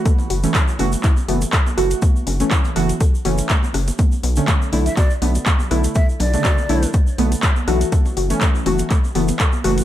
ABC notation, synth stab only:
X:1
M:4/4
L:1/16
Q:"Swing 16ths" 1/4=122
K:Bm
V:1 name="Synth stab"
[E,A,F]3 [E,A,C]3 [E,A,F] z3 [E,A,B,] z3 [E,A,F]2- | [E,A,F]3 [E,A,C]3 [E,A,F] z3 [E,A,C]6 | z3 [D,A,C]3 [D,A,E] z3 [D,A,B,] z3 [D,A,E]2- | [D,A,E]3 [C,D,A,]3 [D,A,E] z3 [D,A,B,] z3 [E,A,F]2- |
[E,A,F]3 [E,A,C]3 [E,A,F] z3 [E,A,B,] z3 [E,A,F]2 |]